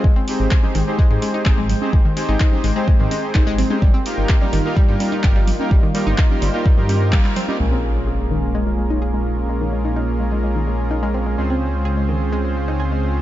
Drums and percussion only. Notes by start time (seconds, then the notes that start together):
0.04 kick
0.28 open hi-hat
0.51 kick, clap
0.63 high conga, low conga
0.75 open hi-hat
0.99 kick
1.22 open hi-hat, high conga
1.46 kick, clap
1.58 low conga
1.70 open hi-hat, low conga
1.82 high conga
1.93 kick
2.17 open hi-hat
2.40 kick, clap
2.52 high conga, low conga
2.64 open hi-hat
2.88 kick
3.00 low conga
3.11 open hi-hat, high conga
3.35 kick, clap
3.58 open hi-hat, low conga
3.71 high conga
3.82 kick
4.06 open hi-hat
4.29 kick, clap
4.41 high conga, low conga
4.53 open hi-hat
4.77 kick
5.00 open hi-hat, high conga
5.23 kick, clap
5.36 low conga
5.47 open hi-hat, low conga
5.59 high conga
5.71 kick
5.95 open hi-hat
6.18 kick, clap
6.30 high conga, low conga
6.42 open hi-hat
6.66 kick
6.78 low conga
6.89 open hi-hat, high conga
7.12 kick, clap
7.25 clap
7.36 open hi-hat, low conga
7.48 high conga